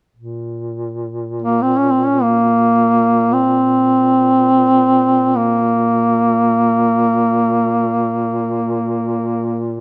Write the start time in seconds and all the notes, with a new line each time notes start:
0.16 A#2
1.42 A#3
1.62 C4
1.77 C#4
1.91 C4
2.06 C#4
2.22 A#3
3.33 C4
5.37 A#3